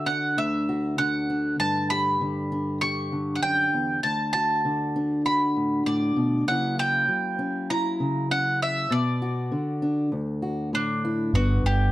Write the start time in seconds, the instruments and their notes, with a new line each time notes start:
Already playing: steel-string acoustic guitar D3 F#4
0.06 steel-string acoustic guitar D4, mandolin F#5
0.37 steel-string acoustic guitar D2, mandolin E5
0.69 steel-string acoustic guitar F#4
0.98 steel-string acoustic guitar D3, mandolin F#5
1.30 steel-string acoustic guitar D4
1.60 steel-string acoustic guitar G2, mandolin A5
1.90 steel-string acoustic guitar G4, mandolin B5
2.21 steel-string acoustic guitar D3
2.52 steel-string acoustic guitar D4
2.81 steel-string acoustic guitar G4, mandolin C#6
3.12 steel-string acoustic guitar D3
3.35 mandolin F#5
3.43 steel-string acoustic guitar F#2, mandolin G5
3.73 steel-string acoustic guitar E2
4.03 steel-string acoustic guitar D2, mandolin A5
4.33 steel-string acoustic guitar F#4, mandolin A5
4.65 steel-string acoustic guitar D3
4.96 steel-string acoustic guitar D4
5.25 steel-string acoustic guitar F#4, mandolin B5
5.56 steel-string acoustic guitar A2
5.86 steel-string acoustic guitar A2, mandolin D5
6.16 steel-string acoustic guitar B2
6.47 steel-string acoustic guitar C#3 F#3 A#3 C#4 E4, mandolin F#5
6.78 steel-string acoustic guitar E4, mandolin G5
7.08 steel-string acoustic guitar F#3
7.39 steel-string acoustic guitar C#4
7.70 steel-string acoustic guitar E4, mandolin A#5
8.00 steel-string acoustic guitar C#3
8.31 steel-string acoustic guitar C#4, mandolin F#5
8.62 mandolin E5
8.90 steel-string acoustic guitar B2, mandolin D5
9.22 steel-string acoustic guitar F#4
9.52 steel-string acoustic guitar D3
9.82 steel-string acoustic guitar D4
10.12 steel-string acoustic guitar D2
10.42 steel-string acoustic guitar F#4
10.73 steel-string acoustic guitar A2, mandolin D4
11.05 steel-string acoustic guitar E4
11.34 picked electric bass G1, steel-string acoustic guitar G2 D3 B3 D4, mandolin F#4
11.64 picked electric bass G1, steel-string acoustic guitar D4, mandolin G4